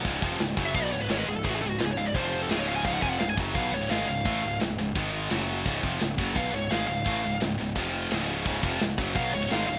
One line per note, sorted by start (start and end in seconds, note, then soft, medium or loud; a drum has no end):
0.04 0.22 C#1 medium
0.04 0.22 C#2 medium
0.04 0.22 G#2 loud
0.04 0.22 C#3 loud
0.04 kick medium
0.04 ride bell medium
0.22 0.38 F1 medium
0.22 0.40 F2 loud
0.22 0.40 C3 loud
0.22 0.40 F3 medium
0.22 kick loud
0.39 0.56 C#1 medium
0.39 0.54 C#2 medium
0.39 0.55 G#2 medium
0.39 snare loud
0.39 ride bell medium
0.56 0.74 F#1 medium
0.56 0.74 F#2 medium
0.56 0.74 C#3 medium
0.56 0.74 F#3 medium
0.56 kick medium
0.66 0.75 E5 medium
0.74 0.91 B1 medium
0.74 0.91 B2 medium
0.74 0.92 F#3 medium
0.74 0.93 B3 loud
0.74 0.83 F5 loud
0.74 kick loud
0.74 ride bell medium
0.83 0.92 D5 medium
0.92 1.08 C#1 medium
0.92 1.06 C#2 medium
0.92 1.07 G#2 medium
0.92 1.01 C#5 medium
1.02 1.10 B4 medium
1.09 1.26 G#1 medium
1.09 1.27 G#2 medium
1.09 1.27 D#3 loud
1.09 1.27 G#3 medium
1.09 1.18 C#5 medium
1.09 snare loud
1.09 ride bell medium
1.18 1.27 B4 medium
1.26 1.43 C#1 medium
1.26 1.42 C#2 medium
1.26 1.42 G#2 medium
1.26 1.36 G#4 medium
1.36 1.44 A4 medium
1.45 1.60 A1 medium
1.45 1.62 A2 medium
1.45 1.62 E3 medium
1.45 1.62 A3 medium
1.45 1.50 G#4 medium
1.45 kick loud
1.45 ride bell medium
1.50 1.55 F#4 medium
1.56 1.61 G#4 medium
1.61 1.78 C#1 medium
1.61 1.77 C#2 medium
1.61 1.77 G#2 medium
1.61 1.69 A4 loud
1.69 1.79 F#4 medium
1.79 1.96 C#1 medium
1.79 1.94 C#2 medium
1.79 1.94 G#2 medium
1.79 1.85 F4 medium
1.79 snare loud
1.79 ride bell medium
1.84 1.91 G#4 medium
1.91 1.97 C#5 medium
1.96 2.13 C#1 medium
1.96 2.12 C#2 medium
1.96 2.12 G#2 medium
1.96 2.06 F5 loud
2.06 2.15 D5 medium
2.14 2.48 F1 medium
2.14 2.49 F2 medium
2.14 2.50 C3 medium
2.14 2.51 F3 loud
2.14 2.40 C5 medium
2.14 kick loud
2.14 ride bell medium
2.42 2.50 A4 medium
2.49 2.82 C#1 medium
2.49 2.83 C#2 loud
2.49 2.84 G#2 loud
2.49 2.85 C#3 loud
2.49 2.59 G#4 medium
2.49 snare loud
2.49 ride bell medium
2.59 2.67 C#5 medium
2.67 2.76 F5 loud
2.76 2.85 G#5 loud
2.85 3.02 C#1 medium
2.85 3.02 C#2 medium
2.85 3.03 G#2 medium
2.85 3.03 C#3 medium
2.85 2.94 F5 medium
2.85 kick medium
2.85 ride bell medium
2.94 3.02 F#5 medium
3.02 3.19 F1 medium
3.02 3.20 F2 medium
3.02 3.20 C3 loud
3.02 3.21 F3 medium
3.02 3.09 G#5 loud
3.02 kick loud
3.09 3.19 F#5 medium
3.19 3.36 C#1 medium
3.19 3.35 C#2 medium
3.19 3.35 G#2 medium
3.19 3.29 F5 medium
3.19 snare loud
3.19 ride bell medium
3.29 3.34 G#5 loud
3.37 3.54 F#1 medium
3.37 3.55 F#2 medium
3.37 3.55 C#3 loud
3.37 3.55 F#3 medium
3.37 kick loud
3.55 3.71 B1 medium
3.55 3.72 B2 medium
3.55 3.72 F#3 medium
3.55 3.74 B3 loud
3.55 3.72 F5 medium
3.55 kick loud
3.55 ride bell medium
3.72 3.89 C#1 medium
3.72 3.87 C#2 medium
3.72 3.87 G#2 medium
3.72 3.91 C#5 medium
3.89 4.07 G#1 loud
3.89 4.07 G#2 medium
3.89 4.07 D#3 medium
3.89 4.08 G#3 medium
3.89 4.07 F5 medium
3.89 snare medium
3.89 ride bell medium
4.08 4.24 C#1 medium
4.08 4.22 C#2 medium
4.08 4.22 G#2 medium
4.08 4.57 F5 loud
4.25 4.42 A1 medium
4.25 4.43 A2 medium
4.25 4.43 E3 medium
4.25 4.43 A3 medium
4.25 kick loud
4.25 ride bell medium
4.43 4.59 C#1 medium
4.43 4.57 C#2 medium
4.43 4.58 G#2 medium
4.60 4.77 C#1 medium
4.60 4.75 C#2 medium
4.60 4.75 G#2 medium
4.60 snare loud
4.60 ride bell medium
4.78 4.94 C#1 medium
4.78 4.92 C#2 medium
4.78 4.93 G#2 medium
4.95 5.28 G#1 medium
4.95 5.30 G#2 medium
4.95 5.31 D#3 medium
4.95 5.31 G#3 loud
4.95 kick loud
4.95 ride bell medium
5.30 5.63 F#1 medium
5.30 5.65 F#2 medium
5.30 5.65 C#3 medium
5.30 5.66 F#3 medium
5.30 snare loud
5.30 ride bell medium
5.65 5.82 C#1 medium
5.65 5.83 C#2 medium
5.65 5.83 G#2 medium
5.65 5.83 C#3 medium
5.65 kick loud
5.65 ride bell medium
5.83 6.00 F1 medium
5.83 6.00 F2 medium
5.83 6.00 C3 medium
5.83 6.01 F3 medium
5.83 kick loud
6.00 6.17 C#1 medium
6.00 6.15 C#2 medium
6.00 6.15 G#2 medium
6.00 snare loud
6.00 ride bell medium
6.18 6.34 F#1 medium
6.18 6.33 F#2 medium
6.18 6.35 C#3 medium
6.18 6.34 F#3 medium
6.18 kick loud
6.34 6.52 B1 medium
6.34 6.52 B2 medium
6.34 6.52 F#3 loud
6.34 6.52 B3 loud
6.34 6.53 F5 loud
6.34 kick loud
6.34 ride bell medium
6.53 6.70 C#1 medium
6.53 6.67 C#2 medium
6.53 6.67 G#2 medium
6.53 6.70 C#5 medium
6.71 6.87 G#1 medium
6.71 6.88 G#2 medium
6.71 6.88 D#3 medium
6.71 6.88 G#3 loud
6.71 6.86 F5 medium
6.71 snare loud
6.71 ride bell medium
6.88 7.05 C#1 medium
6.88 7.03 C#2 medium
6.88 7.03 G#2 medium
6.88 7.37 F5 medium
7.06 7.22 A1 loud
7.06 7.23 A2 medium
7.06 7.23 E3 loud
7.06 7.23 A3 loud
7.06 kick loud
7.06 ride bell medium
7.25 7.40 C#1 medium
7.25 7.38 C#2 medium
7.25 7.38 G#2 medium
7.41 7.58 C#1 medium
7.41 7.55 C#2 medium
7.41 7.56 G#2 medium
7.41 snare loud
7.41 ride bell medium
7.60 7.75 C#1 medium
7.60 7.73 C#2 medium
7.60 7.73 G#2 medium
7.76 8.08 F1 medium
7.76 8.10 F2 loud
7.76 8.11 C3 loud
7.76 8.11 F3 loud
7.76 kick loud
7.76 ride bell medium
8.11 8.44 C#1 loud
8.11 8.46 C#2 medium
8.11 8.46 G#2 medium
8.11 8.46 C#3 loud
8.11 snare loud
8.11 ride bell medium
8.46 8.62 C#1 loud
8.46 8.63 C#2 medium
8.46 8.63 G#2 loud
8.46 8.63 C#3 medium
8.46 kick loud
8.46 ride bell medium
8.63 8.79 F1 loud
8.63 8.79 F2 medium
8.63 8.80 C3 medium
8.63 8.81 F3 medium
8.63 kick loud
8.80 8.97 C#1 medium
8.80 8.94 C#2 medium
8.80 8.94 G#2 medium
8.80 snare loud
8.80 ride bell medium
8.98 9.14 F#1 loud
8.98 9.15 F#2 loud
8.98 9.15 C#3 medium
8.98 9.15 F#3 loud
8.98 kick loud
9.15 9.32 B1 loud
9.15 9.32 B2 medium
9.15 9.33 F#3 loud
9.15 9.33 B3 loud
9.15 9.33 F5 loud
9.15 kick loud
9.15 ride bell medium
9.33 9.49 C#1 medium
9.33 9.47 C#2 medium
9.33 9.48 G#2 medium
9.33 9.50 C#5 medium
9.50 9.66 G#1 medium
9.50 9.68 G#2 medium
9.50 9.68 D#3 loud
9.50 9.68 G#3 loud
9.50 9.66 F5 loud
9.50 snare medium
9.50 ride bell medium
9.67 9.79 C#1 medium
9.67 9.79 C#2 medium
9.67 9.79 G#2 medium
9.67 9.79 F5 loud